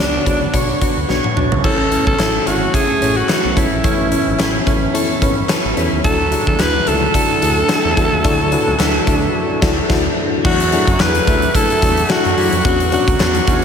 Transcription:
Already playing: D3 B3 D4 C#5
0.00 C#2 D4 F#4 B4 C#5
0.26 C#2 D4 F#4 B4 C#5, kick, closed hi-hat
0.53 B1 D4 F#4 B4 C#5, kick, closed hi-hat
0.81 D2 D4 F#4 B4 C#5, kick, closed hi-hat
0.97 D2
1.08 B1 D4 F#4 B4 C#5, snare
1.24 high tom
1.36 B1 D4 F#4 B4 C#5, mid tom
1.52 C#2, floor tom
1.64 A1 E3 A3 C#4 E4 A4 C#5, kick, crash
1.91 C#4 E4 A4 C#5, closed hi-hat
2.07 B1 A4, kick
2.19 A1 C#4 E4 A4 E5, snare, clap, closed hi-hat
2.46 G#1 C#4 E4 F#4 A4 E5, closed hi-hat
2.74 C#4 E4 G#4 A4 E5, kick, closed hi-hat
3.01 A1 C#4 E4 A4 C#5, closed hi-hat
3.17 F#4
3.29 C#4 E4 A4 B4, snare, clap, closed hi-hat
3.45 B1
3.56 B1 C#4 E4 A4 C#5, kick, closed hi-hat
3.72 A#1
3.84 A1 B3 C#4 E4 A4 C#5, kick, closed hi-hat
4.11 C#4 E4 A4 E5, closed hi-hat
4.27 G#1
4.39 A1 C#4 E4 A4 C#5, snare, clap, closed hi-hat
4.66 A1 C#4 E4 A4 C#5, kick, closed hi-hat
4.94 C#4 E4 A4 C#5, closed hi-hat
5.21 G#1 C#4 E4 A4 B4, kick, closed hi-hat
5.49 C#4 E4 A4 B4, snare, clap, closed hi-hat
5.65 A1
5.76 E2 C#4 E4 A4 C#5, closed hi-hat
5.93 D#2
6.04 D2 D3 F#3 A3 D4 E4 F#4 A4, kick, closed hi-hat
6.31 D4 E4 F#4 G#4, closed hi-hat
6.47 E2 A4, kick
6.59 D2 D4 E4 F#4 G#4 B4, snare, clap, closed hi-hat
6.87 C#2 D4 E4 F#4 A4, closed hi-hat
7.14 D4 E4 F#4 A4, kick, closed hi-hat
7.42 D2 D4 E4 F#4 G#4, closed hi-hat
7.69 D4 E4 F#4 A4, snare, clap, closed hi-hat
7.85 E2
7.97 E2 D4 E4 F#4 A4, kick, closed hi-hat
8.12 D#2
8.24 D2 F#3 D4 E4 F#4 A4, kick, closed hi-hat
8.52 D4 E4 F#4 B4, closed hi-hat
8.67 C#2
8.79 D2 D4 E4 F#4 A4, snare, clap, closed hi-hat, tambourine
9.06 D2 D4 E4 F#4 A4, kick, closed hi-hat
9.61 D2 D4 E4 F#4, kick, snare, crash
9.89 D2 D4 E4 F#4 A4, kick, snare, crash
10.44 E2 F#3 A3 D4 E4 F#4 A4 E5 F#5 D6, kick, crash
10.60 closed hi-hat
10.72 F#3 A3 D4 E4 G#4, closed hi-hat
10.87 F#2, kick, closed hi-hat
10.99 E2 F#3 A3 D4 E4 F#4 B4, snare, clap, tambourine
11.15 closed hi-hat
11.27 D2 F#3 A3 D4 E4 F#4, kick, closed hi-hat
11.42 closed hi-hat
11.54 F#3 A3 D4 E4 A4, kick, closed hi-hat
11.70 closed hi-hat
11.82 E2 F#3 A3 D4 E4 F#4, kick, closed hi-hat
11.97 closed hi-hat
12.09 F#3 A3 D4 E4 F#4 A4, snare, clap, tambourine
12.25 F#2, closed hi-hat
12.37 F#2 F#3 A3 D4 E4 G#4, open hi-hat
12.53 F2, closed hi-hat
12.64 E2 F#3 B3 C#4 D4 F#4 B4 C#6, kick, closed hi-hat
12.80 closed hi-hat
12.92 F#3 B3 C#4 D4 F#4, closed hi-hat
13.08 D2, kick, closed hi-hat
13.20 E2 F#3 B3 C#4 D4 F#4, snare, clap, tambourine
13.35 closed hi-hat
13.47 E2 F#3 B3 C#4 D4 F#4, kick, closed hi-hat

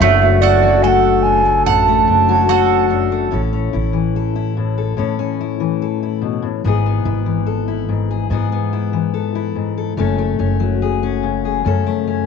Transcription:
Already playing: F#5
0.00 F#1 F#2 F#3 A3 D4 F#4 E5
0.22 A3
0.41 D4 F#4 A4 D5 F#5
0.62 F#3 F#4
0.83 A3 A4 G#5
0.87 F#5
1.23 F#2 D4 G#5
1.45 A3
1.66 A1 F#2 F#5 A5
1.88 A3
2.07 F#1 D4
2.29 F#3 F#4
2.49 A3 F#4 A4 F#5
2.89 F#2 D4
3.12 A3
3.31 A1 A2 C#4 E4 A4
3.53 C#4
3.73 A1 E4
3.93 E3
4.16 A4
4.36 E4
4.57 A2
4.78 A4
4.97 A2 C#4 E4 A4
5.19 C#4
5.41 E4
5.60 E3
5.82 A4
6.03 E4
6.21 B2
6.42 A2
6.64 G#1 G#2 B3 E4 G#4
6.86 B3
7.05 G#1 E4
7.26 E3
7.46 A4
7.68 E4
7.89 G#2
8.11 G#4
8.30 G#2 B3 E4 G#4
8.52 B3
8.73 E4
8.93 E3
9.14 A4
9.35 E4
9.55 G#2
9.78 A4
9.97 F#1 F#2 A3 C#4 A4
10.18 A3
10.39 F#1 C#4
10.60 F#3
10.82 G#4
11.03 C#4
11.23 C#3
11.45 G#4
11.65 F#2 A3 C#4 A4
11.87 A3
12.07 C#4

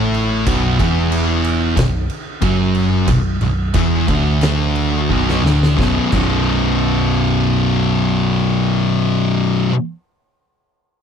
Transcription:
Already playing: A1 A2 A3
0.14 crash
0.46 B0 B1 B2, kick, crash
0.78 E1 E2 E3, kick, crash
1.12 crash
1.44 crash
1.77 B0 B1, kick, snare, crash
2.10 crash
2.41 F#1 F#2 F#3, kick, crash
2.75 crash
3.07 B0 B1, kick, crash
3.41 B0 B1, crash
3.74 E1 E2 E3, kick, crash
4.08 D1 D2 D3, kick, crash
4.41 snare, crash
4.75 crash
5.10 B0 B1 B2, kick
5.29 snare
5.42 D1 D2 D3
5.46 snare
5.63 snare
5.77 B0 B1 F#2, kick, snare
5.82 B2
6.12 B0 B1 F#2 B2, kick, crash

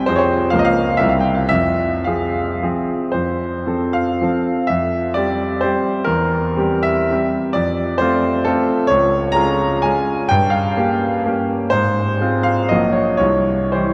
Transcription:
0.06 F2 F3 C4 G#4 C5
0.16 C5 C#5
0.50 C#2 F3 A#3 A#4 F5
0.59 D#5
0.65 F5
0.97 C2 G3 C4 A#4 E5
1.09 F5
1.21 G5
1.35 F5
1.49 F2 E5
2.04 F3 C4 G#4 F5
2.63 F3 C4 G#4
3.12 F2 C5
3.66 F3 C4 A4
3.93 F5
4.21 F3 C4 A4
4.67 F2 E5
5.14 G3 C4 G4 D5
5.61 G3 C4 G4 C5
6.04 E2 A#4
6.56 G3 C4 G4
6.83 E5
7.10 G3 C4 G4
7.53 F2 D5
7.98 A3 C4 F4 C5
8.45 A3 C4 F4 A4
8.87 C#2 C#5
9.32 G#3 C#4 F4 A#5
9.82 G#3 C#4 F4 G#5
10.29 G2 G5
10.50 F5
10.77 A#3 C#4 G4
11.26 A#3 C#4 G4
11.70 G#2 C5
12.21 G#3 C4 F4
12.43 F5
12.69 A#1 F#3 A#3 F#4 D#5
12.92 C#5
13.17 C2 C#5
13.72 E3 G3 G4 C5

